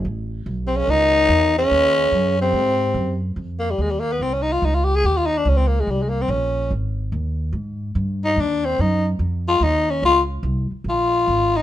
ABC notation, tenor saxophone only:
X:1
M:4/4
L:1/16
Q:"Swing" 1/4=144
K:G#phr
V:1 name="Tenor saxophone"
z4 z3/2 ^B,/2 C2 D6 C2- | C6 ^B,8 z2 | [K:Fm] z2 B, G, A, G, B, =B, C D E F E F G A | G F E =D _D C B, A, G, A, B, C D4 |
z12 z2 E2 | =D2 C2 E2 z4 F2 E2 _D2 | F2 z6 F6 E2 |]